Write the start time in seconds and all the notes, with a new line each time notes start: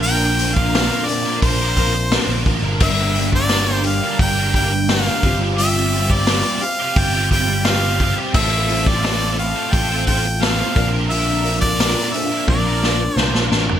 Already playing: A#1 A#2 D3 F3 C4 D4 A#4
0.03 A#2 D3 F3 A#3 G5, open hi-hat
0.07 D4 A#4
0.39 F3 C4 D4 A#4, open hi-hat
0.55 F3 A#3 D4 A#4 F5, kick
0.73 A#2 D3 F3 A#3 C4 D4 A#4, snare, open hi-hat
1.06 F3 C4 D4 A#4 D5, muted overdriven electric guitar stroke, open hi-hat
1.24 F3 A#3 D4 A#4
1.42 A#1 C5, kick, open hi-hat
1.60 F3 A#3 D4 A#4
1.77 F3 A#3 C4 D4 A#4, kick, open hi-hat
1.94 muted overdriven electric guitar stroke
2.11 A#2 D3 F3 A#3 C4 D4 A#4, snare, open hi-hat
2.27 A#1
2.46 A1 F3 A#3 D4 A#4, kick, open hi-hat
2.63 G1 F3 A#3 D4 A#4
2.80 G1 G2 D3 G3 A#3 D4 G4 A#4 E5, kick, crash
3.15 G3 A#3 D4 G4, open hi-hat
3.33 G3 A#3 D4 A#4 D5, kick
3.49 G2 D3 G3 A#3 D4 G4 A#4, snare, open hi-hat
3.84 G3 A#3 D4 G4 F5, muted overdriven electric guitar stroke, open hi-hat
4.03 G3 A#3 D4 A#4
4.19 G1 G5, kick, open hi-hat
4.37 G3 A#3 D4 A#4
4.53 G3 A#3 D4 G4 A#4 G5, kick, open hi-hat
4.57 G3
4.72 muted overdriven electric guitar stroke
4.88 G2 D3 G3 A#3 D4 G4 A#4 F5, snare, open hi-hat
5.06 snare
5.23 G1 G2 F3 G3 C4 F4 G4, kick, open hi-hat
5.40 C4 F4 G4
5.58 G3 C4 F4 G4 E5, open hi-hat
5.92 G3 C4 F4 G4, open hi-hat
6.10 C4 F4 G4 D5, kick
6.27 G3 C4 F4 G4, snare, open hi-hat
6.61 G3 C4 F4 G4 F5, muted overdriven electric guitar stroke, open hi-hat
6.79 C4 F4 G4
6.96 G1 G5, kick, open hi-hat
7.13 C4 F4 G4
7.30 G3 C4 F4 G4 G5, kick, open hi-hat
7.48 muted overdriven electric guitar stroke
7.64 G3 C4 F4 G4 F5, snare, open hi-hat
8.00 G3 C4 F4 G4, kick, open hi-hat
8.17 C4 F4 G4
8.33 A1 A2 F3 A3 C4 F4 A4 E5, kick, crash
8.68 C4 F4 A4, open hi-hat
8.86 C4 F4 A4 D5, kick
9.03 A2 F3 A3 C4 F4 A4, snare, open hi-hat
9.37 C4 F4 A4 F5, muted overdriven electric guitar stroke, open hi-hat
9.55 C4 F4 A4
9.73 A1 G5, kick, open hi-hat
9.90 C4 F4 A4
10.07 F3 C4 F4 A4 G5, kick, open hi-hat
10.25 muted overdriven electric guitar stroke
10.40 A2 F3 A3 C4 F4 A4 F5, snare, open hi-hat
10.75 A#1 A#2 D3 F3 A#3 C4 D4 A#4, kick, open hi-hat
10.93 F3 A#3 D4 A#4
11.10 A#2 D3 F3 A#3 D4 A#4 E5, open hi-hat
11.43 F3 C4 D4 A#4, open hi-hat
11.61 F3 A#3 D4 A#4 D5, kick
11.79 A#2 D3 F3 A#3 C4 D4 A#4, snare, open hi-hat
12.13 F3 C4 D4 A#4 E5, muted overdriven electric guitar stroke, open hi-hat
12.31 F3 A#3 D4 A#4
12.48 A#1 D5, kick, high tom
12.66 F3 A#3 D4 A#4
12.83 F3 A#3 C4 D4 A#4, snare
13.02 muted overdriven electric guitar stroke
13.16 C2 A#2 D3 F3 A#3 C4 D4 A#4 C5, snare
13.34 A#1, snare
13.51 A1 F3 A#3 D4 A#4, snare
13.69 G1 F3 A#3 D4 A#4, floor tom